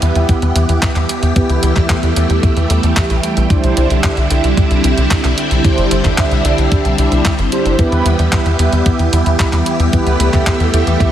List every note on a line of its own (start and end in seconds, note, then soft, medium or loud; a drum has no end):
0.00 0.12 E2 medium
0.00 3.46 E3 medium
0.00 11.12 G3 medium
0.00 1.34 B3 medium
0.00 1.33 B3 medium
0.00 1.33 E4 medium
0.00 3.46 G4 medium
0.00 1.33 G4 medium
0.00 1.33 E5 medium
0.00 closed hi-hat medium
0.15 0.26 E2 medium
0.15 closed hi-hat soft
0.29 kick loud
0.29 closed hi-hat medium
0.42 0.52 E2 medium
0.42 closed hi-hat soft
0.56 0.66 E2 medium
0.56 closed hi-hat medium
0.69 0.79 E2 medium
0.69 closed hi-hat soft
0.82 kick loud
0.82 clap loud
0.82 closed hi-hat medium
0.96 1.06 E2 medium
0.96 clap soft
0.96 closed hi-hat soft
1.09 closed hi-hat medium
1.23 1.33 E2 medium
1.23 closed hi-hat soft
1.36 3.48 A3 medium
1.36 1.73 B3 medium
1.36 1.73 E4 medium
1.36 1.73 G4 medium
1.36 1.73 B4 loud
1.36 kick loud
1.36 closed hi-hat medium
1.50 1.60 D2 medium
1.50 closed hi-hat soft
1.63 1.73 D2 medium
1.63 closed hi-hat medium
1.76 1.86 D2 medium
1.76 2.13 E4 medium
1.76 2.13 G4 medium
1.76 2.13 E5 medium
1.76 kick medium
1.76 clap soft
1.76 closed hi-hat soft
1.90 kick loud
1.90 clap loud
1.90 closed hi-hat medium
2.03 2.13 E2 medium
2.03 closed hi-hat soft
2.16 2.27 E2 medium
2.16 3.47 B3 medium
2.16 3.47 E4 medium
2.16 3.47 G4 medium
2.16 3.47 E5 medium
2.16 closed hi-hat medium
2.30 2.40 E2 medium
2.30 closed hi-hat soft
2.43 kick loud
2.43 closed hi-hat medium
2.57 2.67 E2 medium
2.57 closed hi-hat soft
2.70 2.80 E2 medium
2.70 closed hi-hat medium
2.83 2.94 E2 medium
2.83 closed hi-hat soft
2.97 kick loud
2.97 clap loud
2.97 closed hi-hat medium
3.10 3.20 B1 medium
3.10 closed hi-hat soft
3.23 closed hi-hat medium
3.37 3.47 B1 medium
3.37 closed hi-hat soft
3.50 7.75 D3 medium
3.50 7.75 C4 medium
3.50 3.87 D4 medium
3.50 3.87 E4 medium
3.50 7.75 E4 medium
3.50 3.87 G4 medium
3.50 3.87 C5 loud
3.50 kick loud
3.50 closed hi-hat medium
3.64 3.74 C2 medium
3.64 closed hi-hat soft
3.77 3.87 C2 medium
3.77 closed hi-hat medium
3.90 4.01 C2 medium
3.90 4.27 D4 medium
3.90 4.27 E4 medium
3.90 4.27 G4 medium
3.90 4.27 E5 medium
3.90 closed hi-hat soft
4.04 kick loud
4.04 clap loud
4.04 closed hi-hat medium
4.17 4.27 C2 medium
4.17 closed hi-hat soft
4.31 4.41 C2 medium
4.31 5.61 D4 medium
4.31 5.61 E4 medium
4.31 5.61 G4 medium
4.31 5.61 E5 medium
4.31 closed hi-hat medium
4.44 4.54 C2 medium
4.44 closed hi-hat soft
4.57 kick loud
4.57 closed hi-hat medium
4.71 4.81 C2 medium
4.71 closed hi-hat soft
4.84 4.94 C2 medium
4.84 closed hi-hat medium
4.98 5.08 C2 medium
4.98 closed hi-hat soft
5.11 kick loud
5.11 clap loud
5.11 closed hi-hat medium
5.24 5.35 C2 medium
5.24 clap soft
5.24 closed hi-hat soft
5.38 closed hi-hat medium
5.51 5.61 C2 medium
5.51 closed hi-hat soft
5.64 6.02 D4 medium
5.64 6.02 E4 medium
5.64 6.02 G4 medium
5.64 6.02 C5 loud
5.64 kick loud
5.64 closed hi-hat medium
5.78 5.88 G1 medium
5.78 closed hi-hat soft
5.91 6.02 G1 medium
5.91 closed hi-hat medium
6.05 6.15 G1 medium
6.05 6.42 D4 medium
6.05 6.42 E4 medium
6.05 6.42 E5 medium
6.05 kick medium
6.05 clap soft
6.05 closed hi-hat soft
6.18 kick loud
6.18 clap loud
6.18 closed hi-hat medium
6.31 6.42 C2 medium
6.31 closed hi-hat soft
6.45 6.55 C2 medium
6.45 6.96 D4 medium
6.45 6.96 E4 medium
6.45 6.96 G4 medium
6.45 6.96 E5 medium
6.45 closed hi-hat medium
6.58 6.69 C2 medium
6.58 closed hi-hat soft
6.72 kick loud
6.72 closed hi-hat medium
6.85 6.95 C2 medium
6.85 closed hi-hat soft
6.98 7.09 C2 medium
6.98 7.33 D4 medium
6.98 7.33 E4 medium
6.98 7.33 G4 medium
6.98 7.33 E5 medium
6.98 closed hi-hat medium
7.12 7.22 C2 medium
7.12 closed hi-hat soft
7.25 kick loud
7.25 clap loud
7.25 closed hi-hat medium
7.39 7.49 G1 medium
7.39 closed hi-hat soft
7.52 7.76 D4 medium
7.52 7.76 E4 medium
7.52 7.76 G4 medium
7.52 7.76 C5 loud
7.52 closed hi-hat medium
7.65 7.76 G1 medium
7.65 closed hi-hat soft
7.79 11.12 E3 medium
7.79 8.16 B3 medium
7.79 9.91 B3 medium
7.79 8.16 E4 medium
7.79 8.16 G4 medium
7.79 11.12 G4 medium
7.79 8.16 B4 loud
7.79 kick loud
7.79 closed hi-hat medium
7.92 8.02 E2 medium
7.92 closed hi-hat soft
8.06 8.16 E2 medium
8.06 closed hi-hat medium
8.19 8.29 E2 medium
8.19 8.56 B3 medium
8.19 8.56 E4 medium
8.19 8.56 G4 medium
8.19 8.56 E5 medium
8.19 closed hi-hat soft
8.32 kick loud
8.32 clap loud
8.32 closed hi-hat medium
8.46 8.56 E2 medium
8.46 closed hi-hat soft
8.59 8.69 E2 medium
8.59 9.90 B3 medium
8.59 9.90 E4 medium
8.59 9.90 G4 medium
8.59 9.90 E5 medium
8.59 closed hi-hat medium
8.73 8.83 E2 medium
8.73 closed hi-hat soft
8.86 kick loud
8.86 closed hi-hat medium
8.99 9.10 E2 medium
8.99 closed hi-hat soft
9.13 9.23 E2 medium
9.13 closed hi-hat medium
9.26 9.36 E2 medium
9.26 closed hi-hat soft
9.40 kick loud
9.40 clap loud
9.40 closed hi-hat medium
9.53 9.63 E2 medium
9.53 clap soft
9.53 closed hi-hat soft
9.66 closed hi-hat medium
9.80 9.90 E2 medium
9.80 closed hi-hat soft
9.93 11.12 A3 medium
9.93 10.30 B3 medium
9.93 10.30 E4 medium
9.93 10.30 G4 medium
9.93 10.30 B4 loud
9.93 kick loud
9.93 closed hi-hat medium
10.06 10.17 D2 medium
10.06 closed hi-hat soft
10.20 10.30 D2 medium
10.20 closed hi-hat medium
10.33 10.44 D2 medium
10.33 10.70 B3 medium
10.33 10.70 E4 medium
10.33 10.70 G4 medium
10.33 10.70 E5 medium
10.33 kick medium
10.33 clap soft
10.33 closed hi-hat soft
10.47 kick loud
10.47 clap loud
10.47 closed hi-hat medium
10.60 10.70 E2 medium
10.60 closed hi-hat soft
10.73 10.84 E2 medium
10.73 11.12 B3 medium
10.73 11.12 E4 medium
10.73 11.12 G4 medium
10.73 11.12 E5 medium
10.73 closed hi-hat medium
10.87 10.97 E2 medium
10.87 closed hi-hat soft
11.00 kick loud
11.00 closed hi-hat medium